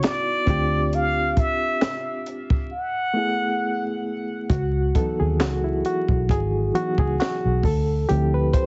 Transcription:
Already playing: B3 D#4 E4 F#4
0.03 D5, snare, clap, closed hi-hat
0.46 D2 C4 D4 F4 G4, kick, closed hi-hat
0.93 F5, closed hi-hat
1.37 E5, kick, closed hi-hat
1.82 snare, clap, closed hi-hat
2.26 closed hi-hat
2.50 kick
2.73 F#5
3.14 A3 B3 E4
3.18 G#4
4.50 C#2 F#4, kick, closed hi-hat
4.95 E3 F#3 B3 D#4 A4, kick, closed hi-hat
5.20 D#2 G#4
5.40 C#2 F#4, snare, clap, closed hi-hat
5.64 E4
5.85 F#4, closed hi-hat
6.08 B1, kick
6.29 G#1 G#4, kick, closed hi-hat
6.74 E3 F#3 B3 D#4 F#4, closed hi-hat
6.98 C#2 G#4, kick
7.20 F#4, snare, clap, closed hi-hat
7.45 B1
7.63 D2 A4, kick, open hi-hat
8.08 D2 F3 C4 E4 G4, closed hi-hat
8.34 B4
8.53 C5, kick, closed hi-hat

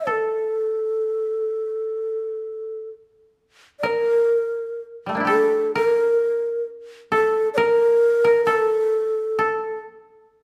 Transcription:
Already playing: E5 G5
0.07 A4
1.50 G#4
1.84 G4
3.79 A#4 D5
3.87 A#4
5.06 G3 A3
5.15 A#3 D4
5.20 E4
5.25 G4 A4
5.75 A#4
7.12 A4
7.54 A#4 D5
8.24 A#4
8.45 A4
9.39 A4

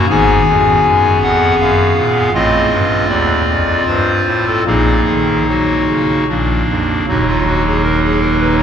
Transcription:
0.10 G#1 G#2 B3 G#4 G#5
0.47 F2
0.85 F#2
1.23 F2 F#5
1.60 F#2 F5
1.97 A#2
2.34 A1 A2 C4 F4 D#5
2.72 G2
3.09 D#2 D5
3.48 F2
3.87 G2 C5
4.26 A2
4.47 A4
4.66 A#1 A#2 A#3 D#4 G#4
5.09 D#3
5.49 F#3 F#4
5.89 C#3
6.29 A#1 A#2 A#3 D4
6.69 F2
7.08 D#1 D#2 F#3 A#3 D#4 F#4
7.29 F4
7.46 F#4
7.66 G#4
7.84 A#4
8.04 G#4
8.21 A#4
8.40 B4
8.59 C#5

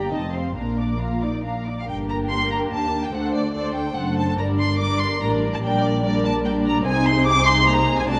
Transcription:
Already playing: G1 A#3 G4 D5 G5 A#5
0.10 F1 C4 D#4 D#5 A5
0.33 C4 C5 F5 C6
0.55 A#1 A#3 D4 A#4 F5 A#5
0.78 D5 D6
0.99 F4 F5 A#5
1.22 D#4 D5 D6
1.44 D4 F5 A#5
1.65 D#4 D5 D6
1.79 F5
1.87 G1 G2 A#3 D4 G4 A#4 G5
2.09 A#5
2.30 C6
2.51 A#5
2.71 D#2 A5
3.04 G5
3.13 D2 A3 D4 A4 C5 F#5
3.35 D5
3.54 A3 D4 A4 C5 D5
3.75 G5
3.95 F#1 F#2 A3 D4 A4 C5 F#5
4.18 A5
4.29 A5
4.37 G1 G2 G3 D4 A#4 D5 A#5
4.59 C6
4.79 G3 D4 A#4 D5 D6
5.00 C6
5.21 A1 A2 G3 D4 A#4 D5 A#5
5.53 A5
5.62 A#1 A#2 G3 D4 A#4 D5 G5
5.82 D5
6.04 G3 D4 A#4 D5
6.25 A5
6.45 G3 D4 A#4 D5 G5
6.67 A#5
6.85 C2 C3 C4 D#4 G#4 C5 G#5
7.06 C6
7.26 D6
7.46 C6
7.68 A#3 A#5
7.98 G#5
8.08 C2 C3 A3 D4 F#4 D5 A5

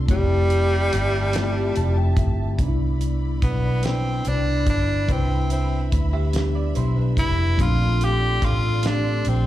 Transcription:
Already playing: A3 F4
0.08 F1 G3 A3 C4 E4 G4 E5 A5, kick, closed hi-hat
0.12 G4
0.50 closed hi-hat
0.93 G1, closed hi-hat
1.33 A3 C4 E4 F4, snare, closed hi-hat
1.44 G4
1.76 F1 A5, closed hi-hat
1.98 G5
2.17 G1 E5, kick, closed hi-hat
2.58 C2 G3 B3 D4 E4 D5 B5, kick, closed hi-hat
2.62 D#4
2.68 E4
3.01 closed hi-hat
3.42 B1 B3, kick, closed hi-hat
3.82 G3 C4 D4 E4 B4, snare, closed hi-hat
4.25 C2 D4, closed hi-hat
4.66 G1 D4, kick, closed hi-hat
5.07 C2 G3 D4 B4 E5, kick, closed hi-hat
5.11 C4 E4
5.50 C4, closed hi-hat
5.92 D2, kick, closed hi-hat
6.13 G4 E5
6.32 G3 B3 D4 G4, closed hi-hat
6.36 snare
6.55 D5
6.75 B1 E4 C5, closed hi-hat
6.97 D4 B4
7.17 F1 E4, kick, closed hi-hat
7.57 A#1 A3 C4 D4 F4 A4 D5 C6, kick, closed hi-hat
7.61 F4
8.01 G4, closed hi-hat
8.42 A1 F4, kick, closed hi-hat
8.83 A3 C4 D4 G4, snare, closed hi-hat
9.25 A#1 C4, closed hi-hat

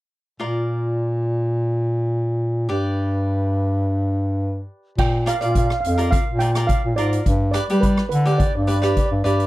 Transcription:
0.40 A#2 F4 A#4 D5
2.69 G2 G4 B4 D5
4.98 A#2 G5, kick, crash
5.26 F4 A#4 D5 F5, cross-stick, closed hi-hat
5.34 F5
5.41 A#2 F4 A#4 D5 F5, closed hi-hat
5.51 F5
5.55 F5, kick, closed hi-hat
5.66 F5, cross-stick
5.73 F5
5.81 F2 F5
5.85 F5, closed hi-hat
5.95 F4 A#4 D5 F5, closed hi-hat
6.11 F5, kick, closed hi-hat
6.28 A#2
6.39 F4 A#4 D5 G5, closed hi-hat
6.55 F4 A#4 D5, cross-stick, closed hi-hat
6.67 F5, kick, closed hi-hat
6.84 A#2
6.96 G#2 F4 A#4 D5, closed hi-hat
7.13 closed hi-hat
7.26 G2, kick, closed hi-hat
7.51 G4 B4 D5, cross-stick, closed hi-hat
7.70 G3 G4 B4 D5, closed hi-hat
7.81 B4, kick, closed hi-hat
7.97 cross-stick
8.09 D3 B4, closed hi-hat
8.26 G4 B4 D5, closed hi-hat
8.38 D5, kick, closed hi-hat
8.47 D5
8.54 G2 D5
8.62 D5
8.67 G4 B4 D5, closed hi-hat
8.76 D5
8.82 G4 B4 D5, cross-stick, closed hi-hat
8.91 D5
8.97 D5, kick, closed hi-hat
9.06 D5
9.11 G2
9.24 G2 G4 B4 D5, closed hi-hat
9.40 closed hi-hat

